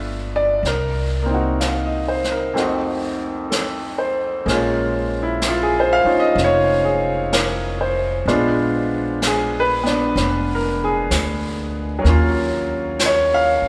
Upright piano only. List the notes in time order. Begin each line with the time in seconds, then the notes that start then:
Already playing: A3 B3 D4 F4 E5
0.36 D5
0.67 A#4
1.22 A#3 C4
1.30 D#4
1.34 F#4
1.60 F5
1.84 D#5
2.08 C5
2.32 A#4
2.54 F2 A3 C4 D#4
2.59 F#4
3.50 A4
3.98 C5
4.45 G#3 A#3 C#4
4.50 F4
5.23 E4
5.48 F4
5.63 G#4
5.80 C5
5.93 F5
6.04 C#4 D#4 F4
6.20 D#5
6.44 C#5
6.84 G#4
7.32 A#4
7.81 C5
8.28 G#3 B3 D4 F4
9.27 G#4
9.60 B4
9.83 B3 D4
10.55 A#4
10.84 G#4
11.99 F#3 A#3
12.06 C#4 F4
13.06 C#5
13.34 F5